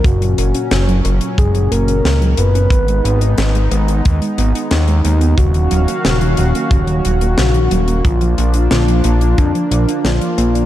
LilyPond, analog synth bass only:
\new Staff \with { instrumentName = "Analog synth bass" } { \clef bass \time 4/4 \key ees \minor \tempo 4 = 90 ges,,8 ges,,8 ges,,8 ges,,8 ges,,8 ges,,8 des,8 ges,,8 | aes,,8 aes,,8 aes,,8 aes,,8 ees,8 aes,,8 ees,8 ees,8 | ees,,8 ees,,8 ees,,8 ees,,8 ees,,8 ees,,8 bes,,8 ees,,8 | bes,,8 bes,,8 bes,,8 bes,,8 f,8 bes,,8 bes,,8 bes,,8 | }